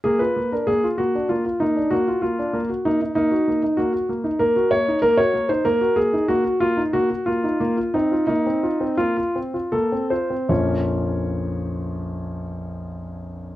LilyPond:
\new Staff \with { instrumentName = "Grand piano" } { \time 4/4 \key bes \minor \tempo 4 = 93 << { aes'16 ces''8 bes'16 aes'8 ges'8 f'8 ees'8 ges'8 f'8~ | f'8 ees'8 ees'4 ges'4 bes'8 des''8 | bes'16 des''8 c''16 bes'8 aes'8 ges'8 f'8 ges'8 f'8~ | f'8 ees'8 ees'4 f'4 a'8 c''8 |
<bes,, f, f bes des' f' des''>1 | } \\ { bes16 f'16 bes16 d'16 bes16 f'16 bes16 d'16 bes16 f'16 bes16 d'16 bes16 f'16 bes16 d'16 | bes16 ges'16 bes16 r16 bes16 ges'16 bes16 ees'16 bes16 ges'16 bes16 ees'16 bes16 ges'16 bes16 ees'16 | bes16 ges'16 bes16 ees'16 bes16 ges'16 bes16 ees'16 bes16 r16 bes16 ees'16 bes16 ges'16 bes16 ees'16 | bes16 f'16 c'16 f'16 bes16 c'16 f'16 c'16 bes16 f'16 c'16 f'16 bes16 c'16 f'16 c'16 |
r1 | } >> }